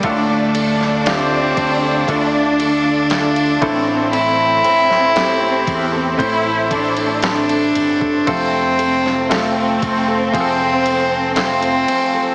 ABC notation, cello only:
X:1
M:4/4
L:1/8
Q:1/4=58
K:F
V:1 name="Cello"
A,2 C2 D4 | E4 z2 D2 | C2 A,2 C2 C2 |]